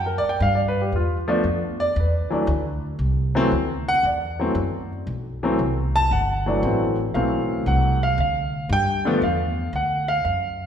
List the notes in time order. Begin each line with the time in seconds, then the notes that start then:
Already playing: F#2
0.06 A#4
0.18 D5
0.24 muted upright bass stroke
0.29 G5
0.40 G2 F5
0.55 D5
0.68 B4
0.82 G4
0.92 E2 F4
1.28 F3 A3 B3 D4
1.44 F2
1.80 D5
1.96 E2 B4
2.30 E3 F#3 A3 D4, muted upright bass stroke
2.47 D2
2.99 C2
3.35 E3 F#3 A3 C4
3.52 D2
3.88 F#5
4.03 E2 D5
4.39 E3 F#3 A3 C4
4.55 F#2
5.07 B1
5.43 E3 F#3 A3 C4
5.59 C2
5.96 A5
6.11 G1 F#5
6.46 E3 F#3 A3 D4
6.63 A1 E3 F#3 A3 C4
7.14 B1 E3 F#3 A3 C4 F5
7.66 C2 F#5
8.03 F5
8.18 D2 F5
8.69 G2 G5
9.05 D3 F3 A3 B3
9.22 E2 F5
9.73 D2 F#5
10.08 F5
10.25 F#2 F5